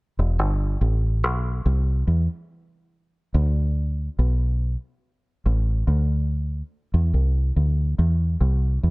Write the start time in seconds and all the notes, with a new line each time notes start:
0.19 E1
0.39 G1
0.81 A1
1.24 B1
1.66 C2
2.07 E2
3.34 D2
4.19 B1
5.46 A1
5.87 D2
6.94 E2
7.14 C2
7.56 D2
7.99 E2
8.41 C2
8.83 E2